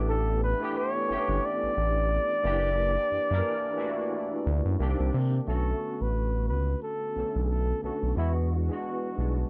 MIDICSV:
0, 0, Header, 1, 4, 480
1, 0, Start_track
1, 0, Key_signature, 2, "minor"
1, 0, Tempo, 674157
1, 51, Time_signature, 4, 2, 24, 8
1, 6762, End_track
2, 0, Start_track
2, 0, Title_t, "Flugelhorn"
2, 0, Program_c, 0, 56
2, 64, Note_on_c, 0, 69, 96
2, 281, Note_off_c, 0, 69, 0
2, 309, Note_on_c, 0, 71, 96
2, 551, Note_on_c, 0, 73, 96
2, 562, Note_off_c, 0, 71, 0
2, 1036, Note_on_c, 0, 74, 117
2, 1047, Note_off_c, 0, 73, 0
2, 3424, Note_off_c, 0, 74, 0
2, 3904, Note_on_c, 0, 69, 91
2, 4285, Note_on_c, 0, 71, 78
2, 4295, Note_off_c, 0, 69, 0
2, 4609, Note_off_c, 0, 71, 0
2, 4613, Note_on_c, 0, 71, 75
2, 4835, Note_off_c, 0, 71, 0
2, 4858, Note_on_c, 0, 69, 83
2, 5264, Note_off_c, 0, 69, 0
2, 5293, Note_on_c, 0, 68, 57
2, 5335, Note_on_c, 0, 69, 85
2, 5345, Note_off_c, 0, 68, 0
2, 5573, Note_off_c, 0, 69, 0
2, 5579, Note_on_c, 0, 69, 71
2, 5798, Note_off_c, 0, 69, 0
2, 5821, Note_on_c, 0, 64, 83
2, 5926, Note_off_c, 0, 64, 0
2, 6059, Note_on_c, 0, 66, 69
2, 6762, Note_off_c, 0, 66, 0
2, 6762, End_track
3, 0, Start_track
3, 0, Title_t, "Tine electric piano"
3, 0, Program_c, 1, 4
3, 0, Control_c, 1, 64, 127
3, 0, Note_on_c, 1, 52, 93
3, 0, Note_on_c, 1, 57, 80
3, 0, Note_on_c, 1, 59, 85
3, 0, Note_on_c, 1, 62, 87
3, 0, Note_on_c, 1, 67, 95
3, 287, Note_off_c, 1, 52, 0
3, 291, Note_off_c, 1, 57, 0
3, 294, Note_off_c, 1, 59, 0
3, 301, Note_off_c, 1, 67, 0
3, 321, Note_off_c, 1, 62, 0
3, 424, Note_on_c, 1, 52, 70
3, 432, Note_on_c, 1, 57, 69
3, 439, Note_on_c, 1, 59, 70
3, 446, Note_on_c, 1, 62, 62
3, 455, Note_on_c, 1, 67, 83
3, 702, Note_off_c, 1, 52, 0
3, 705, Note_off_c, 1, 57, 0
3, 709, Note_off_c, 1, 59, 0
3, 713, Note_off_c, 1, 62, 0
3, 717, Note_off_c, 1, 67, 0
3, 768, Note_on_c, 1, 52, 71
3, 774, Note_on_c, 1, 57, 59
3, 781, Note_on_c, 1, 59, 64
3, 791, Note_on_c, 1, 61, 52
3, 798, Note_on_c, 1, 67, 79
3, 834, Note_off_c, 1, 61, 0
3, 834, Note_on_c, 1, 62, 68
3, 1523, Note_off_c, 1, 52, 0
3, 1526, Note_off_c, 1, 57, 0
3, 1530, Note_off_c, 1, 59, 0
3, 1539, Note_off_c, 1, 67, 0
3, 1557, Note_off_c, 1, 62, 0
3, 1725, Note_on_c, 1, 52, 88
3, 1732, Note_on_c, 1, 58, 89
3, 1738, Control_c, 1, 64, 0
3, 1739, Note_on_c, 1, 64, 76
3, 1744, Note_on_c, 1, 62, 79
3, 1752, Note_on_c, 1, 67, 99
3, 1852, Control_c, 1, 64, 127
3, 2208, Note_off_c, 1, 52, 0
3, 2211, Note_off_c, 1, 58, 0
3, 2215, Note_off_c, 1, 64, 0
3, 2217, Note_off_c, 1, 62, 0
3, 2221, Note_off_c, 1, 67, 0
3, 2347, Note_on_c, 1, 52, 83
3, 2355, Note_on_c, 1, 58, 68
3, 2364, Note_on_c, 1, 64, 76
3, 2369, Note_on_c, 1, 62, 70
3, 2376, Note_on_c, 1, 70, 99
3, 2623, Note_off_c, 1, 52, 0
3, 2627, Note_off_c, 1, 58, 0
3, 2631, Note_off_c, 1, 64, 0
3, 2634, Note_off_c, 1, 62, 0
3, 2637, Note_off_c, 1, 70, 0
3, 2682, Note_on_c, 1, 52, 73
3, 2688, Note_on_c, 1, 57, 56
3, 2696, Note_on_c, 1, 64, 69
3, 2702, Note_on_c, 1, 62, 76
3, 2710, Note_on_c, 1, 66, 87
3, 2732, Note_on_c, 1, 58, 70
3, 2743, Note_off_c, 1, 57, 0
3, 3405, Note_on_c, 1, 50, 66
3, 3406, Note_off_c, 1, 52, 0
3, 3406, Note_off_c, 1, 58, 0
3, 3413, Note_off_c, 1, 64, 0
3, 3414, Note_on_c, 1, 58, 77
3, 3417, Note_off_c, 1, 62, 0
3, 3419, Control_c, 1, 64, 0
3, 3420, Note_off_c, 1, 66, 0
3, 3422, Note_on_c, 1, 60, 78
3, 3431, Note_on_c, 1, 62, 81
3, 3435, Note_on_c, 1, 67, 87
3, 3455, Note_on_c, 1, 51, 78
3, 3462, Note_off_c, 1, 50, 0
3, 3545, Control_c, 1, 64, 127
3, 3812, Note_off_c, 1, 58, 0
3, 3816, Note_off_c, 1, 60, 0
3, 3820, Note_off_c, 1, 62, 0
3, 3822, Note_off_c, 1, 67, 0
3, 3832, Note_off_c, 1, 51, 0
3, 3884, Note_on_c, 1, 50, 70
3, 3892, Note_on_c, 1, 57, 75
3, 3898, Note_on_c, 1, 59, 68
3, 3900, Control_c, 1, 64, 0
3, 3907, Note_on_c, 1, 61, 64
3, 3913, Note_on_c, 1, 66, 84
3, 4008, Control_c, 1, 64, 127
3, 4641, Note_off_c, 1, 50, 0
3, 4646, Note_off_c, 1, 57, 0
3, 4649, Note_off_c, 1, 59, 0
3, 4653, Note_off_c, 1, 61, 0
3, 4656, Note_off_c, 1, 66, 0
3, 5087, Note_on_c, 1, 50, 59
3, 5094, Note_on_c, 1, 57, 54
3, 5102, Note_on_c, 1, 59, 48
3, 5109, Note_on_c, 1, 61, 52
3, 5118, Note_on_c, 1, 69, 69
3, 5480, Note_off_c, 1, 50, 0
3, 5484, Note_off_c, 1, 57, 0
3, 5488, Note_off_c, 1, 59, 0
3, 5491, Note_off_c, 1, 61, 0
3, 5496, Note_off_c, 1, 69, 0
3, 5566, Note_on_c, 1, 50, 54
3, 5575, Note_on_c, 1, 57, 53
3, 5580, Note_on_c, 1, 59, 48
3, 5586, Note_on_c, 1, 61, 47
3, 5595, Note_on_c, 1, 66, 63
3, 5764, Note_off_c, 1, 50, 0
3, 5768, Note_off_c, 1, 57, 0
3, 5771, Note_off_c, 1, 59, 0
3, 5774, Note_off_c, 1, 61, 0
3, 5778, Note_off_c, 1, 66, 0
3, 5802, Note_on_c, 1, 52, 75
3, 5811, Note_on_c, 1, 56, 73
3, 5817, Note_on_c, 1, 59, 66
3, 5821, Control_c, 1, 64, 0
3, 5825, Note_on_c, 1, 62, 65
3, 5833, Note_on_c, 1, 66, 75
3, 5941, Control_c, 1, 64, 127
3, 6094, Note_off_c, 1, 52, 0
3, 6098, Note_off_c, 1, 56, 0
3, 6101, Note_off_c, 1, 59, 0
3, 6106, Note_off_c, 1, 62, 0
3, 6109, Note_off_c, 1, 66, 0
3, 6181, Note_on_c, 1, 52, 63
3, 6191, Note_on_c, 1, 56, 54
3, 6196, Note_on_c, 1, 59, 57
3, 6203, Note_on_c, 1, 62, 56
3, 6211, Note_on_c, 1, 66, 68
3, 6460, Note_off_c, 1, 52, 0
3, 6465, Note_off_c, 1, 56, 0
3, 6467, Note_off_c, 1, 59, 0
3, 6471, Note_off_c, 1, 62, 0
3, 6475, Note_off_c, 1, 66, 0
3, 6520, Note_on_c, 1, 52, 52
3, 6528, Note_on_c, 1, 55, 39
3, 6536, Note_on_c, 1, 59, 48
3, 6545, Note_on_c, 1, 62, 56
3, 6552, Note_on_c, 1, 66, 58
3, 6575, Note_on_c, 1, 56, 49
3, 6583, Note_off_c, 1, 55, 0
3, 6762, Note_off_c, 1, 52, 0
3, 6762, Note_off_c, 1, 56, 0
3, 6762, Note_off_c, 1, 59, 0
3, 6762, Note_off_c, 1, 62, 0
3, 6762, Note_off_c, 1, 66, 0
3, 6762, End_track
4, 0, Start_track
4, 0, Title_t, "Analog synth bass"
4, 0, Program_c, 2, 38
4, 0, Note_on_c, 2, 33, 110
4, 383, Note_off_c, 2, 33, 0
4, 780, Note_on_c, 2, 31, 46
4, 833, Note_off_c, 2, 31, 0
4, 915, Note_on_c, 2, 31, 115
4, 993, Note_off_c, 2, 31, 0
4, 1160, Note_on_c, 2, 33, 53
4, 1198, Note_off_c, 2, 33, 0
4, 1262, Note_on_c, 2, 33, 111
4, 1557, Note_off_c, 2, 33, 0
4, 1740, Note_on_c, 2, 30, 105
4, 2115, Note_off_c, 2, 30, 0
4, 2217, Note_on_c, 2, 42, 42
4, 2271, Note_off_c, 2, 42, 0
4, 2355, Note_on_c, 2, 42, 99
4, 2433, Note_off_c, 2, 42, 0
4, 3179, Note_on_c, 2, 38, 111
4, 3285, Note_off_c, 2, 38, 0
4, 3314, Note_on_c, 2, 42, 101
4, 3392, Note_off_c, 2, 42, 0
4, 3416, Note_on_c, 2, 36, 105
4, 3523, Note_off_c, 2, 36, 0
4, 3559, Note_on_c, 2, 36, 112
4, 3635, Note_off_c, 2, 36, 0
4, 3661, Note_on_c, 2, 48, 106
4, 3846, Note_off_c, 2, 48, 0
4, 3899, Note_on_c, 2, 35, 95
4, 4085, Note_off_c, 2, 35, 0
4, 4278, Note_on_c, 2, 33, 78
4, 4621, Note_on_c, 2, 37, 75
4, 4632, Note_off_c, 2, 33, 0
4, 4806, Note_off_c, 2, 37, 0
4, 5099, Note_on_c, 2, 35, 47
4, 5152, Note_off_c, 2, 35, 0
4, 5238, Note_on_c, 2, 35, 93
4, 5504, Note_off_c, 2, 35, 0
4, 5577, Note_on_c, 2, 35, 44
4, 5631, Note_off_c, 2, 35, 0
4, 5716, Note_on_c, 2, 35, 81
4, 5793, Note_off_c, 2, 35, 0
4, 5814, Note_on_c, 2, 40, 89
4, 6192, Note_off_c, 2, 40, 0
4, 6536, Note_on_c, 2, 35, 82
4, 6723, Note_off_c, 2, 35, 0
4, 6762, End_track
0, 0, End_of_file